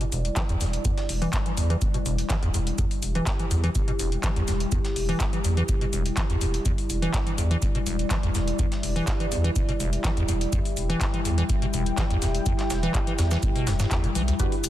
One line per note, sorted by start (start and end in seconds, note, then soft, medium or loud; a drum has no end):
0.00 0.05 B2 medium
0.00 14.69 G3 medium
0.00 14.69 E4 medium
0.00 2.77 D5 medium
0.00 closed hi-hat soft
0.12 0.23 E1 medium
0.12 0.30 E1 loud
0.12 open hi-hat loud
0.12 shaker medium
0.25 closed hi-hat soft
0.36 0.44 E3 loud
0.36 kick loud
0.36 snare loud
0.36 clap loud
0.36 closed hi-hat medium
0.36 shaker medium
0.49 0.57 D1 medium
0.49 0.56 E2 loud
0.49 closed hi-hat soft
0.61 0.78 E1 medium
0.61 0.65 E2 medium
0.61 snare soft
0.61 open hi-hat loud
0.61 shaker medium
0.73 closed hi-hat soft
0.85 0.92 E2 medium
0.85 kick loud
0.85 closed hi-hat medium
0.85 shaker medium
0.98 snare medium
0.98 closed hi-hat soft
1.09 1.27 E1 medium
1.09 open hi-hat medium
1.09 open hi-hat loud
1.22 1.31 E3 loud
1.22 closed hi-hat soft
1.33 kick loud
1.33 snare loud
1.33 clap loud
1.33 closed hi-hat medium
1.33 shaker medium
1.46 1.52 E3 medium
1.46 closed hi-hat soft
1.57 1.62 E2 medium
1.57 1.75 E2 medium
1.57 open hi-hat loud
1.57 shaker medium
1.70 1.76 E3 loud
1.70 closed hi-hat soft
1.82 1.89 E1 medium
1.82 kick loud
1.82 closed hi-hat medium
1.82 shaker medium
1.94 1.98 B2 medium
1.94 closed hi-hat soft
2.06 2.16 E1 medium
2.06 2.24 E1 loud
2.06 open hi-hat loud
2.06 shaker medium
2.18 closed hi-hat soft
2.30 2.37 E3 medium
2.30 kick loud
2.30 snare loud
2.30 clap loud
2.30 closed hi-hat medium
2.30 shaker medium
2.43 2.51 D1 medium
2.43 2.49 E2 loud
2.43 closed hi-hat soft
2.54 2.72 E1 medium
2.54 2.58 E2 medium
2.54 open hi-hat loud
2.54 shaker medium
2.67 closed hi-hat soft
2.78 2.85 E2 medium
2.78 6.64 G4 medium
2.78 kick loud
2.78 closed hi-hat medium
2.78 shaker medium
2.91 open hi-hat medium
3.02 3.20 E1 loud
3.02 open hi-hat loud
3.02 shaker medium
3.15 3.25 E3 loud
3.15 closed hi-hat soft
3.27 kick loud
3.27 snare loud
3.27 clap loud
3.27 closed hi-hat medium
3.27 shaker medium
3.39 3.46 E3 medium
3.39 closed hi-hat soft
3.51 3.55 E2 medium
3.51 3.69 E2 medium
3.51 open hi-hat loud
3.51 shaker medium
3.64 3.70 E3 loud
3.64 closed hi-hat soft
3.75 3.82 E1 medium
3.75 kick loud
3.75 closed hi-hat medium
3.75 shaker medium
3.88 3.92 B2 medium
3.88 closed hi-hat soft
3.99 4.10 E1 medium
3.99 4.17 E1 loud
3.99 open hi-hat loud
3.99 shaker medium
4.12 closed hi-hat soft
4.23 4.30 E3 loud
4.23 kick loud
4.23 snare loud
4.23 clap loud
4.23 closed hi-hat medium
4.23 shaker medium
4.36 4.45 D1 medium
4.36 4.43 E2 loud
4.36 closed hi-hat soft
4.48 4.66 E1 medium
4.48 4.52 E2 medium
4.48 snare soft
4.48 open hi-hat loud
4.48 shaker medium
4.60 closed hi-hat soft
4.72 4.79 E2 medium
4.72 kick loud
4.72 closed hi-hat medium
4.72 shaker medium
4.84 snare medium
4.84 closed hi-hat soft
4.96 5.14 E1 loud
4.96 open hi-hat medium
4.96 open hi-hat loud
5.09 5.18 E3 loud
5.09 closed hi-hat soft
5.20 kick loud
5.20 snare loud
5.20 clap loud
5.20 closed hi-hat medium
5.20 shaker medium
5.33 5.39 E3 medium
5.33 closed hi-hat soft
5.44 5.49 E2 medium
5.44 5.62 E2 medium
5.44 open hi-hat loud
5.44 shaker medium
5.57 5.64 E3 loud
5.57 closed hi-hat soft
5.69 5.76 E1 medium
5.69 kick loud
5.69 closed hi-hat medium
5.69 shaker medium
5.81 5.85 B2 medium
5.81 closed hi-hat soft
5.93 6.03 E1 medium
5.93 6.11 E1 loud
5.93 open hi-hat loud
5.93 shaker medium
6.06 closed hi-hat soft
6.17 6.24 E3 loud
6.17 kick loud
6.17 snare loud
6.17 clap loud
6.17 closed hi-hat medium
6.17 shaker medium
6.30 6.38 D1 medium
6.30 6.36 E2 loud
6.30 closed hi-hat soft
6.41 6.59 E1 medium
6.41 6.45 E2 medium
6.41 open hi-hat loud
6.41 shaker medium
6.54 closed hi-hat soft
6.65 6.72 E2 medium
6.65 10.51 D5 medium
6.65 kick loud
6.65 closed hi-hat medium
6.65 shaker medium
6.78 open hi-hat medium
6.90 7.08 E1 medium
6.90 open hi-hat loud
6.90 shaker medium
7.02 7.12 E3 loud
7.02 closed hi-hat soft
7.14 kick loud
7.14 snare loud
7.14 clap loud
7.14 closed hi-hat medium
7.14 shaker medium
7.26 7.33 E3 medium
7.26 closed hi-hat soft
7.38 7.42 E2 medium
7.38 7.56 E2 medium
7.38 open hi-hat loud
7.38 shaker medium
7.51 7.57 E3 loud
7.51 closed hi-hat soft
7.62 7.69 E1 medium
7.62 kick loud
7.62 closed hi-hat medium
7.62 shaker medium
7.75 7.79 B2 medium
7.75 closed hi-hat soft
7.86 7.97 E1 medium
7.86 8.04 E1 loud
7.86 open hi-hat loud
7.86 shaker medium
7.99 closed hi-hat soft
8.11 8.18 E3 loud
8.11 kick loud
8.11 snare loud
8.11 clap loud
8.11 closed hi-hat medium
8.11 shaker medium
8.23 8.32 D1 medium
8.23 8.30 E2 loud
8.23 closed hi-hat soft
8.35 8.53 E1 medium
8.35 8.39 E2 medium
8.35 snare soft
8.35 open hi-hat loud
8.35 shaker medium
8.47 closed hi-hat soft
8.59 8.66 E2 medium
8.59 kick loud
8.59 closed hi-hat medium
8.59 shaker medium
8.72 snare medium
8.72 closed hi-hat soft
8.83 9.01 E1 medium
8.83 open hi-hat medium
8.96 9.05 E3 loud
8.96 closed hi-hat soft
9.07 kick medium
9.07 snare loud
9.07 clap loud
9.07 closed hi-hat medium
9.07 shaker medium
9.20 9.26 E3 medium
9.20 closed hi-hat soft
9.32 9.49 E2 medium
9.32 9.36 E2 medium
9.32 open hi-hat loud
9.32 shaker medium
9.44 9.51 E3 loud
9.44 closed hi-hat soft
9.56 9.63 E1 medium
9.56 kick loud
9.56 closed hi-hat medium
9.56 shaker medium
9.68 9.72 B2 medium
9.68 closed hi-hat soft
9.80 9.98 E1 loud
9.80 9.90 E1 medium
9.80 open hi-hat loud
9.80 shaker medium
9.93 closed hi-hat soft
10.04 10.11 E3 loud
10.04 kick medium
10.04 snare loud
10.04 clap loud
10.04 closed hi-hat medium
10.04 shaker medium
10.17 10.25 D1 medium
10.17 10.23 E2 loud
10.17 closed hi-hat soft
10.28 10.46 E1 medium
10.28 10.33 E2 medium
10.28 open hi-hat loud
10.28 shaker medium
10.41 closed hi-hat soft
10.53 10.60 E2 medium
10.53 14.39 G5 medium
10.53 kick loud
10.53 closed hi-hat medium
10.53 shaker medium
10.65 open hi-hat medium
10.77 10.95 E1 medium
10.77 open hi-hat medium
10.77 shaker medium
10.90 10.99 E3 loud
10.90 closed hi-hat soft
11.01 kick loud
11.01 snare loud
11.01 clap loud
11.01 closed hi-hat medium
11.01 shaker medium
11.14 11.20 E3 medium
11.14 closed hi-hat soft
11.25 11.43 E2 medium
11.25 11.29 E2 medium
11.25 open hi-hat loud
11.25 shaker medium
11.38 11.44 E3 loud
11.38 closed hi-hat soft
11.49 11.56 E1 medium
11.49 kick loud
11.49 closed hi-hat medium
11.49 shaker medium
11.62 11.66 B2 medium
11.62 closed hi-hat soft
11.74 11.91 E1 loud
11.74 11.84 E1 medium
11.74 open hi-hat loud
11.74 shaker medium
11.86 closed hi-hat soft
11.98 12.05 E3 loud
11.98 kick medium
11.98 snare loud
11.98 clap loud
11.98 closed hi-hat medium
11.98 shaker medium
12.10 12.19 D1 medium
12.10 12.17 E2 loud
12.10 closed hi-hat soft
12.22 12.40 E1 medium
12.22 12.26 E2 medium
12.22 snare soft
12.22 open hi-hat medium
12.22 shaker medium
12.35 closed hi-hat soft
12.46 12.53 E2 medium
12.46 kick loud
12.46 closed hi-hat medium
12.46 shaker medium
12.59 snare medium
12.59 clap soft
12.59 closed hi-hat soft
12.70 12.88 E1 medium
12.70 snare loud
12.70 open hi-hat medium
12.70 shaker medium
12.83 12.92 E3 loud
12.83 closed hi-hat soft
12.94 kick loud
12.94 clap loud
12.94 closed hi-hat medium
12.94 shaker medium
13.07 13.13 E3 medium
13.07 closed hi-hat soft
13.19 13.23 E2 medium
13.19 13.37 E2 medium
13.19 snare loud
13.19 open hi-hat loud
13.19 shaker medium
13.31 13.38 E3 loud
13.31 snare loud
13.31 closed hi-hat soft
13.31 shaker medium
13.43 13.50 E1 medium
13.43 kick loud
13.43 closed hi-hat medium
13.43 shaker medium
13.55 13.68 B2 medium
13.55 open hi-hat medium
13.67 13.85 E1 loud
13.67 13.74 E2 loud
13.67 snare loud
13.67 open hi-hat loud
13.67 shaker medium
13.80 13.86 G2 loud
13.80 snare loud
13.80 closed hi-hat soft
13.80 shaker medium
13.91 14.05 E2 medium
13.91 kick loud
13.91 snare loud
13.91 clap loud
13.91 closed hi-hat medium
13.91 shaker medium
14.04 14.12 E1 loud
14.04 14.10 E3 medium
14.04 closed hi-hat soft
14.15 14.33 B1 medium
14.15 14.22 E3 medium
14.15 open hi-hat loud
14.15 shaker medium
14.28 14.34 D2 medium
14.28 closed hi-hat soft
14.39 14.47 E2 medium
14.39 14.55 D4 medium
14.39 14.55 F#4 medium
14.39 14.55 G4 medium
14.39 14.55 B4 medium
14.39 14.69 D5 medium
14.39 kick loud
14.39 closed hi-hat medium
14.39 shaker medium
14.39 maracas soft
14.52 open hi-hat medium
14.64 14.69 E1 loud
14.64 open hi-hat loud
14.64 shaker medium
14.64 maracas loud